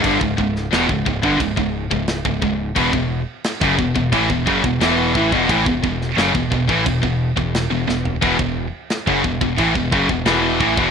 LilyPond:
<<
  \new Staff \with { instrumentName = "Distorted electric guitar" } { \clef bass \time 4/4 \key e \major \tempo 4 = 88 <g, d>16 <cis, gis,>16 <cis, gis,>8 <e, b,>16 <cis, gis,>16 <cis, gis,>16 <g, d>16 <cis, gis,>16 <cis, gis,>8 <cis, gis,>8 <cis, gis,>16 <cis, gis,>8 | <e, b,>16 <e, b,>8 r8 <fis, cis>16 <e, b,>16 <e, b,>16 <a, e>16 <e, b,>16 <fis, cis>16 <e, b,>16 <e, b, e>8 <a, e>16 <e, b,>16 | <a, e>16 <e, b,>16 <e, b,>8 <fis, cis>16 <e, b,>16 <e, b,>16 <a, e>16 <e, b,>16 <e, b,>8 <e, b,>8 <e, b,>16 <e, b,>8 | <e, b,>16 <e, b,>8 r8 <fis, cis>16 <e, b,>16 <e, b,>16 <a, e>16 <e, b,>16 <fis, cis>16 <e, b,>16 <e, b, e>8 <a, e>16 <e, b,>16 | }
  \new Staff \with { instrumentName = "Distorted electric guitar" } { \clef bass \time 4/4 \key e \major <g, d>16 <cis, gis,>16 <cis, gis,>8 <e, b,>16 <cis, gis,>16 <cis, gis,>16 <g, d>16 <cis, gis,>16 <cis, gis,>8 <cis, gis,>8 <cis, gis,>16 <cis, gis,>8 | <e, b,>16 <e, b,>8 r8 <fis, cis>16 <e, b,>16 <e, b,>16 <a, e>16 <e, b,>16 <fis, cis>16 <e, b,>16 <e, b, e>8 <a, e>16 <e, b,>16 | <a, e>16 <e, b,>16 <e, b,>8 <fis, cis>16 <e, b,>16 <e, b,>16 <a, e>16 <e, b,>16 <e, b,>8 <e, b,>8 <e, b,>16 <e, b,>8 | <e, b,>16 <e, b,>8 r8 <fis, cis>16 <e, b,>16 <e, b,>16 <a, e>16 <e, b,>16 <fis, cis>16 <e, b,>16 <e, b, e>8 <a, e>16 <e, b,>16 | }
  \new Staff \with { instrumentName = "Overdriven electric guitar" } { \clef bass \time 4/4 \key e \major <g, d>16 <cis, gis,>16 <cis, gis,>8 <e, b,>16 <cis, gis,>16 <cis, gis,>16 <g, d>16 <cis, gis,>16 <cis, gis,>8 <cis, gis,>8 <cis, gis,>16 <cis, gis,>8 | <e, b,>16 <e, b,>8 r8 <fis, cis>16 <e, b,>16 <e, b,>16 <a, e>16 <e, b,>16 <fis, cis>16 <e, b,>16 <e, b, e>8 <a, e>16 <e, b,>16 | <a, e>16 <e, b,>16 <e, b,>8 <fis, cis>16 <e, b,>16 <e, b,>16 <a, e>16 <e, b,>16 <e, b,>8 <e, b,>8 <e, b,>16 <e, b,>8 | <e, b,>16 <e, b,>8 r8 <fis, cis>16 <e, b,>16 <e, b,>16 <a, e>16 <e, b,>16 <fis, cis>16 <e, b,>16 <e, b, e>8 <a, e>16 <e, b,>16 | }
  \new Staff \with { instrumentName = "Picked electric bass" } { \clef bass \time 4/4 \key e \major g,,16 cis,,16 cis,,8 e,,16 cis,,16 cis,,16 g,,16 cis,,16 cis,,8 cis,,8 cis,,16 cis,,8 | e,,16 e,,8 r8 fis,,16 e,,16 e,,16 a,,16 e,,16 fis,,16 e,,16 e,,8 a,,16 e,,16 | a,,16 e,,16 e,,8 fis,,16 e,,16 e,,16 a,,16 e,,16 e,,8 e,,8 e,,16 e,,8 | e,,16 e,,8 r8 fis,,16 e,,16 e,,16 a,,16 e,,16 fis,,16 e,,16 e,,8 a,,16 e,,16 | }
  \new DrumStaff \with { instrumentName = "Drums" } \drummode { \time 4/4 <cymc bd>16 bd16 bd16 sn16 <cymc sn>16 bd16 bd16 bd16 <cymc bd>16 bd8 bd16 <cymc sn>16 bd16 bd8 | <cymc bd>16 bd8. <cymc sn>16 <bd sn>16 bd16 bd16 <cymc bd>16 bd16 bd16 bd16 <cymc sn>8 bd16 bd16 | <cymc bd>16 bd16 bd16 sn16 <cymc sn>16 bd16 bd16 bd16 <cymc bd>16 bd8 bd16 <cymc sn>8 sn16 tomfh16 | <cymc bd>16 bd8. <cymc sn>16 bd16 bd16 bd16 <cymc bd>16 bd16 bd16 bd16 <cymc sn>8 bd16 bd16 | }
>>